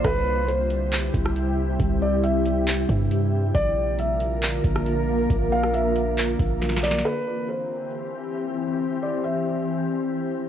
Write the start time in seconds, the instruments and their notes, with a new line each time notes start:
0.04 808-style bass C2, ambient pad C3 G3 E4 G4, felt piano B4, kick, closed hi-hat
0.48 felt piano C5, closed hi-hat
0.70 closed hi-hat
0.92 clap, closed hi-hat
1.14 808-style bass C2, kick, closed hi-hat
1.25 cross-stick
1.36 closed hi-hat
1.80 808-style bass C2, kick, closed hi-hat
2.02 felt piano D5
2.23 felt piano E5, closed hi-hat
2.45 closed hi-hat
2.67 clap, closed hi-hat
2.89 808-style bass G2, kick, closed hi-hat
3.11 closed hi-hat
3.55 808-style bass A#1, ambient pad D3 A#3 F4 A#4, felt piano D5, kick, closed hi-hat
3.99 felt piano E5, closed hi-hat
4.20 closed hi-hat
4.42 clap, closed hi-hat
4.64 808-style bass A#1, kick, closed hi-hat
4.76 cross-stick
4.86 closed hi-hat
5.30 808-style bass A#1, kick, closed hi-hat
5.52 felt piano F5
5.63 cross-stick
5.74 felt piano E5, closed hi-hat
5.96 closed hi-hat
6.17 clap, closed hi-hat
6.39 808-style bass A#1, kick, closed hi-hat
6.61 snare, closed hi-hat
6.69 snare
6.77 snare
6.83 felt piano D5, snare
6.91 snare
6.98 snare
7.05 ambient pad E3 C4 G4, felt piano B4
7.49 felt piano C5
9.03 felt piano D5
9.24 felt piano E5